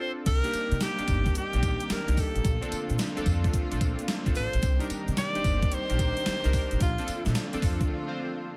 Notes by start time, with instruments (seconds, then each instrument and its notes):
Already playing: synth keys C4 D4 F4 A4
0.00 alto saxophone C5
0.26 upright bass C2, string section D#3 G3 A#3 C4 G4, alto saxophone A#4, kick, closed hi-hat, crash, tambourine, shaker
0.43 synth keys A#3 D4 D#4 G4, closed hi-hat, shaker
0.54 muted upright bass stroke, closed hi-hat, tambourine
0.71 upright bass C3, closed hi-hat, shaker
0.81 alto saxophone G4, snare, closed hi-hat, tambourine, shaker
0.98 synth keys A#3 D4 D#4 G4, muted upright bass stroke, closed hi-hat, shaker
1.08 upright bass G1, kick, closed hi-hat, tambourine
1.26 kick, closed hi-hat, shaker
1.35 alto saxophone G4, muted upright bass stroke, closed hi-hat, shaker
1.53 upright bass A#1, synth keys A#3 D4 D#4 G4, closed hi-hat, shaker
1.63 kick, closed hi-hat, tambourine
1.80 closed hi-hat, shaker
1.90 alto saxophone A#4, muted upright bass stroke, snare, closed hi-hat, tambourine, shaker
2.07 upright bass C2, synth keys A#3 D4 D#4 G4, closed hi-hat, shaker
2.17 alto saxophone A4, kick, open hi-hat, tambourine, shaker
2.35 upright bass A1, closed hi-hat, shaker
2.44 upright bass A#1, string section D3 F3 A3 F4, kick, closed hi-hat, tambourine, shaker
2.61 synth keys C4 D4 F4 A4, closed hi-hat, shaker
2.72 muted upright bass stroke, closed hi-hat, tambourine
2.90 upright bass A#2, closed hi-hat, shaker
2.98 snare, closed hi-hat, tambourine, shaker
3.16 synth keys C4 D4 F4 A4, muted upright bass stroke, closed hi-hat, shaker
3.26 upright bass F2, kick, closed hi-hat, tambourine
3.44 kick, closed hi-hat, shaker
3.53 muted upright bass stroke, kick, closed hi-hat, shaker
3.71 upright bass A#1, synth keys C4 D4 F4 A4, closed hi-hat, shaker
3.81 kick, closed hi-hat, tambourine
3.99 closed hi-hat, shaker
4.08 snare, closed hi-hat, tambourine, shaker
4.25 upright bass C2, synth keys C4 D4 F4 A4, kick, closed hi-hat, shaker
4.35 upright bass A1, alto saxophone C5, open hi-hat, tambourine, shaker
4.53 upright bass A#1, closed hi-hat, shaker
4.62 upright bass C2, string section D#3 G3 C4 G4, kick, closed hi-hat, tambourine, shaker
4.79 synth keys D4 D#4 G4 A#4, closed hi-hat, shaker
4.90 muted upright bass stroke, closed hi-hat, tambourine
5.08 upright bass C3, closed hi-hat, shaker
5.17 alto saxophone D5, snare, closed hi-hat, tambourine, shaker
5.35 synth keys D4 D#4 G4 C5, muted upright bass stroke, closed hi-hat, shaker
5.44 upright bass G1, kick, closed hi-hat, tambourine
5.62 kick, closed hi-hat, shaker
5.72 alto saxophone C5, muted upright bass stroke, closed hi-hat, shaker
5.89 upright bass A#1, synth keys D4 D#4 G4 A#4, closed hi-hat, shaker
5.99 kick, closed hi-hat, tambourine
6.17 closed hi-hat, shaker
6.26 muted upright bass stroke, snare, closed hi-hat, tambourine, shaker
6.44 upright bass C2, synth keys D4 D#4 G4 A#4, closed hi-hat, shaker
6.53 kick, open hi-hat, tambourine, shaker
6.71 upright bass A1, closed hi-hat, shaker
6.80 upright bass A#1, string section D3 F3 A3 F4, alto saxophone F4, kick, closed hi-hat, tambourine, shaker
6.98 synth keys C4 D4 F4 A4, closed hi-hat, shaker
7.07 muted upright bass stroke, closed hi-hat, tambourine, shaker
7.25 upright bass A#2, snare, closed hi-hat, shaker
7.35 snare, closed hi-hat, tambourine, shaker
7.53 synth keys C4 D4 F4 A4, muted upright bass stroke, closed hi-hat, shaker
7.62 upright bass F2, kick, open hi-hat, tambourine, shaker
7.81 kick, closed hi-hat, shaker
8.07 synth keys C4 D4 F4 C5